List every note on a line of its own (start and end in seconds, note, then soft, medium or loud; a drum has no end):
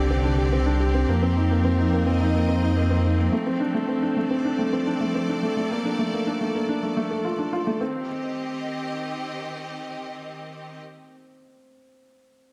0.00 1.05 C2 medium
0.00 1.08 D3 medium
0.00 0.10 C4 medium
0.00 6.46 C4 medium
0.00 0.24 D4 medium
0.00 0.38 G4 medium
0.00 1.97 G4 medium
0.00 1.08 D5 medium
0.00 impact medium
0.10 0.23 C4 medium
0.24 0.37 D4 medium
0.38 0.51 G4 medium
0.52 0.65 C4 medium
0.66 0.79 D4 medium
0.80 0.93 G4 medium
0.94 1.02 C4 medium
1.08 3.29 F2 medium
1.08 7.81 F3 medium
1.08 1.22 A#3 medium
1.23 1.36 C4 medium
1.37 1.50 D#4 medium
1.47 1.64 A#3 medium
1.47 3.32 A#4 medium
1.65 1.78 C4 medium
1.79 1.92 D#4 medium
1.93 2.06 A#3 medium
2.05 2.14 C4 medium
2.05 3.32 D#5 medium
2.21 2.34 D#4 medium
2.35 2.48 A#3 medium
2.49 2.62 C4 medium
2.63 2.76 D#4 medium
2.76 2.90 A#3 medium
2.91 3.04 C4 medium
3.04 3.18 D#4 medium
3.18 3.26 A#3 medium
3.32 3.45 A3 medium
3.46 3.60 C4 medium
3.55 7.81 A4 medium
3.60 3.73 D4 medium
3.74 3.88 A3 medium
3.88 4.02 C4 medium
4.02 4.16 D4 medium
4.17 4.30 A3 medium
4.28 4.38 C4 medium
4.28 7.81 D5 medium
4.45 4.58 D4 medium
4.59 4.72 A3 medium
4.73 4.86 C4 medium
4.87 5.00 D4 medium
5.01 5.14 A3 medium
5.15 5.28 C4 medium
5.29 5.42 D4 medium
5.43 5.51 A3 medium
5.57 5.70 A3 medium
5.71 5.84 A#3 medium
5.85 5.98 D4 medium
5.99 6.12 A3 medium
6.13 6.26 A#3 medium
6.27 6.40 D4 medium
6.41 6.54 A3 medium
6.55 6.63 A#3 medium
6.69 6.82 D4 medium
6.83 6.95 A3 medium
6.97 7.10 A3 medium
7.11 7.24 A4 medium
7.25 7.33 F4 medium
7.39 7.52 D4 medium
7.53 7.61 F4 medium
7.67 7.80 A3 medium
7.81 10.81 D#3 medium
7.81 8.07 C4 medium
7.89 10.81 C4 medium
7.97 10.81 G4 medium
8.06 10.81 D#5 medium